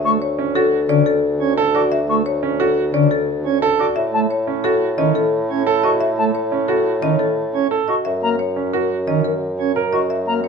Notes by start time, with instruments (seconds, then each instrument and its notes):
Already playing: bassoon D2
0.04 pipe organ A3, flute C#6
0.22 marimba C#5
0.39 grand piano C#4
0.55 grand piano F#4, marimba A4
0.89 pipe organ D3, grand piano C#4, marimba D5
1.06 marimba A4
1.40 pipe organ C#4
1.57 grand piano A4
1.74 grand piano F#4, marimba D5, flute D6
1.92 marimba E5
2.09 pipe organ A3, flute C#6
2.26 marimba C#5
2.43 grand piano C#4
2.60 grand piano F#4, marimba A4
2.94 pipe organ D3, grand piano C#4, marimba D5
3.11 marimba A4
3.45 pipe organ C#4
3.62 grand piano A4
3.79 grand piano F#4, marimba D5, flute D6
3.96 bassoon A2, marimba E5
4.13 pipe organ A3, flute A5
4.30 marimba C#5
4.47 grand piano C#4
4.64 grand piano F#4, marimba A4
4.98 pipe organ D#3, grand piano C#4, marimba D#5
5.15 marimba A4
5.50 pipe organ C#4
5.67 grand piano A4
5.83 grand piano F#4, marimba D#5, flute C#6
6.00 marimba E5
6.18 pipe organ A3, flute A5
6.35 marimba C#5
6.52 grand piano C#4
6.68 grand piano F#4, marimba A4
7.02 pipe organ D#3, grand piano C#4, marimba D#5
7.19 marimba A4
7.54 pipe organ C#4
7.71 grand piano A4
7.88 grand piano F#4, marimba D#5, flute C#6
8.05 bassoon F#2, marimba E5
8.23 pipe organ A#3, flute A#5
8.39 marimba C#5
8.56 grand piano C#4
8.73 grand piano F#4, marimba A#4
9.08 pipe organ D#3, grand piano C#4, marimba D#5
9.24 marimba A#4
9.59 pipe organ C#4
9.76 grand piano A#4
9.93 grand piano F#4, marimba D#5, flute C#6
10.10 marimba E5
10.27 pipe organ A#3, flute A#5
10.44 marimba C#5